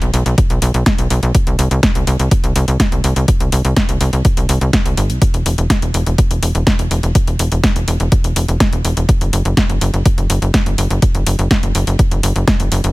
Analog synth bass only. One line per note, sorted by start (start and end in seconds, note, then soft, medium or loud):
0.02 0.11 B1 medium
0.14 0.24 B1 loud
0.26 0.36 B1 medium
0.50 0.60 B1 medium
0.62 0.72 B1 loud
0.74 0.84 B1 medium
0.99 1.08 B1 medium
1.11 1.20 B1 loud
1.23 1.32 B1 loud
1.47 1.57 C2 medium
1.59 1.69 C2 loud
1.71 1.81 C2 loud
1.95 2.05 C2 medium
2.07 2.17 C2 loud
2.20 2.29 C2 medium
2.44 2.53 C2 medium
2.56 2.66 C2 loud
2.68 2.78 C2 medium
2.92 3.02 C2 medium
3.04 3.14 C2 loud
3.16 3.26 C2 loud
3.40 3.50 C2 medium
3.52 3.62 C2 loud
3.65 3.74 C2 loud
3.89 3.98 C2 medium
4.01 4.11 C2 loud
4.13 4.23 C2 medium
4.37 4.47 C2 medium
4.49 4.59 C2 loud
4.61 4.71 C2 medium
4.86 4.95 C2 medium
4.97 5.11 G1 loud
5.10 5.19 C2 loud
5.34 5.44 E1 medium
5.46 5.56 E1 loud
5.58 5.68 E1 medium
5.82 5.92 E1 medium
5.94 6.04 E1 loud
6.07 6.16 E1 medium
6.31 6.40 E1 medium
6.43 6.53 E1 loud
6.55 6.65 E1 loud
6.79 6.89 E1 medium
6.91 7.01 E1 loud
7.03 7.13 E1 medium
7.27 7.37 E1 medium
7.40 7.49 E1 loud
7.52 7.61 E1 medium
7.76 7.86 E1 medium
7.88 7.98 E1 loud
8.00 8.10 E1 loud
8.24 8.34 E1 medium
8.36 8.46 E1 loud
8.48 8.58 E1 medium
8.73 8.82 E1 medium
8.85 8.95 E1 loud
8.97 9.07 E1 medium
9.21 9.31 F#1 medium
9.33 9.43 F#1 loud
9.45 9.55 F#1 medium
9.69 9.79 F#1 medium
9.81 9.91 F#1 loud
9.94 10.03 F#1 medium
10.18 10.27 F#1 medium
10.30 10.40 F#1 loud
10.42 10.52 F#1 medium
10.66 10.76 F#1 medium
10.78 10.88 F#1 loud
10.91 11.00 F#1 medium
11.15 11.24 F#1 medium
11.27 11.36 F#1 medium
11.39 11.48 F#1 loud
11.63 11.73 F#1 medium
11.75 11.85 F#1 loud
11.87 11.97 F#1 medium
12.11 12.21 F#1 medium
12.23 12.33 F#1 loud
12.36 12.45 F#1 medium
12.60 12.69 F#1 medium
12.72 12.82 F#1 loud
12.84 12.92 F#1 medium